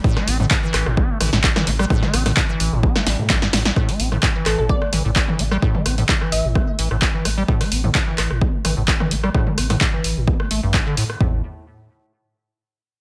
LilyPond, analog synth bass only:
\new Staff \with { instrumentName = "Analog synth bass" } { \clef bass \time 4/4 \key a \minor \tempo 4 = 129 r8 a,,8 r8 a,,16 a,,8 r16 a,,16 a,,8 r16 a,,8 | r8 a,,8 r8 a,,16 a,,8 r16 a,,16 a,8 r16 a,,8 | r8 a,,8 r8 a,,16 a,,8 r16 a,,16 a,,8 r16 a,,8 | r8 a,,8 r8 a,,16 a,,8 r16 a,,16 a,,8 r16 a,,8 |
r8 a,,8 r8 a,,16 a,,8 r16 a,,16 a,,8 r16 a,,8 | r8 a,,8 r8 a,,16 a,,8 r16 a,,16 a,,8 r16 a,8 | a,,8 r2. r8 | }